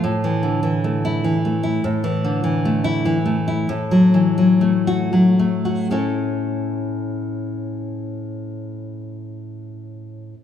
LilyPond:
\new Staff \with { instrumentName = "Nylon-string guitar" } { \clef bass \time 3/4 \key a \major \tempo 4 = 82 << { r4 \tuplet 3/2 { r4 e'8 } r4 | r4 \tuplet 3/2 { r4 e'8 } r4 | r4 \tuplet 3/2 { r4 fis'8 } r4 | <a, cis' e' a' cis''>2.~ |
<a, cis' e' a' cis''>2. | } \\ { \tuplet 3/2 { a,8 e8 d8 e8 a4 e8 a8 e'8 } | \tuplet 3/2 { a,8 e8 d8 e8 a4 e8 a8 e'8 } | \tuplet 3/2 { a,8 fis8 e8 fis8 a4 fis8 a8 fis'8 } | r2. |
r2. | } >> }